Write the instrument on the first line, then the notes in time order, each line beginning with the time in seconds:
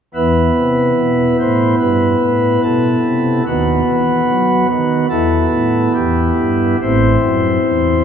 pipe organ
0.14 E2 E3 B3 E4 B4
0.57 C3
0.98 B2
1.39 A2 C5
1.79 G2 B4
2.21 A2
2.63 B2 A4
3.04 C3
3.46 D#2 D#3 B3 F#4 B4
3.87 E3
4.29 F#3
4.70 D#3 F#4
5.09 E2 E3 B3 E4 A4
5.50 A2
5.95 E2 G4
6.37 G2
6.81 A1 A2 C4 E4 C5
7.23 F#2
7.66 E2